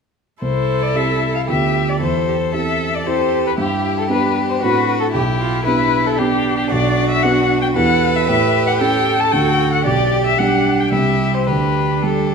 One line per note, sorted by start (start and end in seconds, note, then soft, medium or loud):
0.41 0.94 C2 soft
0.41 1.52 E4 soft
0.41 1.49 A4 medium
0.41 0.84 C5 soft
0.82 0.97 D5 soft
0.94 1.44 C4 soft
0.94 1.44 E4 soft
0.94 1.45 G4 soft
0.94 1.34 E5 soft
1.35 1.40 F5 soft
1.48 1.99 D2 soft
1.48 1.97 B3 soft
1.48 1.97 F4 soft
1.48 2.00 G4 soft
1.48 1.97 G4 soft
1.48 2.02 G4 soft
1.48 1.90 E5 medium
1.89 2.02 D5 soft
2.00 2.51 E2 soft
2.00 2.27 E4 soft
2.00 2.53 C5 soft
2.04 3.56 A4 soft
2.28 2.36 G4 soft
2.53 3.02 C4 soft
2.53 3.02 E4 soft
2.53 3.03 G4 soft
2.53 3.05 A4 soft
2.53 2.97 E5 soft
2.95 3.08 D5 soft
3.06 3.54 C4 soft
3.06 3.54 E4 soft
3.06 3.54 G4 soft
3.06 3.57 G4 soft
3.06 3.45 C5 medium
3.47 3.52 B4 medium
3.58 4.08 G2 soft
3.58 4.12 E4 soft
3.58 4.65 G4 soft
3.58 3.97 G4 soft
3.98 4.03 A4 soft
4.09 4.57 B3 soft
4.09 4.58 D4 soft
4.09 4.62 D4 soft
4.09 4.58 G4 soft
4.09 4.48 B4 soft
4.49 4.54 C5 soft
4.61 5.13 A2 soft
4.61 5.10 C4 soft
4.61 5.11 D4 soft
4.61 5.13 F#4 soft
4.61 5.12 F#4 soft
4.61 5.11 F#4 soft
4.61 4.99 B4 medium
5.00 5.05 A4 medium
5.13 5.65 B1 soft
5.13 6.19 E4 soft
5.13 5.65 G4 medium
5.13 5.21 G4 medium
5.40 5.65 F4 soft
5.65 6.14 B3 soft
5.65 6.14 D4 soft
5.65 6.18 E4 medium
5.65 6.15 G4 soft
5.65 6.08 B4 medium
6.07 6.20 A4 medium
6.17 6.67 B3 soft
6.17 7.75 D4 medium
6.17 6.71 D4 soft
6.17 6.67 D4 soft
6.17 6.57 G4 medium
6.17 6.68 G4 soft
6.57 6.70 G4 medium
6.70 7.22 B1 medium
6.70 7.78 F#4 medium
6.70 7.09 D5 medium
7.10 7.24 E5 medium
7.23 7.72 B3 soft
7.23 7.72 D4 soft
7.23 7.72 F#4 soft
7.23 7.61 F#5 medium
7.62 7.67 G5 medium
7.75 8.26 E2 soft
7.75 8.24 B3 soft
7.75 8.25 E4 soft
7.75 8.25 G4 soft
7.75 8.29 A4 soft
7.75 8.82 B4 medium
7.75 8.17 F#5 medium
8.16 8.27 E5 medium
8.28 8.79 A2 medium
8.28 9.33 G4 medium
8.28 8.66 E5 medium
8.67 8.72 F#5 medium
8.80 9.29 C#4 soft
8.80 9.29 E4 soft
8.80 9.29 G4 soft
8.80 9.84 A4 medium
8.80 9.21 G5 medium
9.20 9.33 A5 medium
9.32 9.84 D2 soft
9.32 9.82 A3 soft
9.32 9.82 D4 soft
9.32 9.85 F#4 soft
9.32 9.82 F#4 soft
9.32 9.72 G5 medium
9.73 9.85 F#5 medium
9.85 10.37 B1 soft
9.85 10.38 G4 medium
9.85 10.89 G4 soft
9.85 10.25 D5 medium
10.27 10.40 E5 medium
10.38 10.89 G3 soft
10.38 10.94 D4 soft
10.38 10.90 D4 soft
10.38 10.90 G4 soft
10.38 10.82 F#5 medium
10.80 10.92 G5 medium
10.92 11.46 C2 soft
10.92 11.43 G3 soft
10.92 11.44 C4 soft
10.92 11.48 E4 soft
10.92 11.46 G4 soft
10.92 11.44 G4 soft
10.92 11.35 E5 medium
11.34 11.49 C5 soft
11.46 12.02 D2 soft
11.46 12.35 D4 soft
11.46 12.02 G4 soft
11.46 12.04 B4 soft
12.02 12.35 G3 soft
12.02 12.35 A3 soft
12.02 12.35 G4 soft
12.02 12.35 A4 soft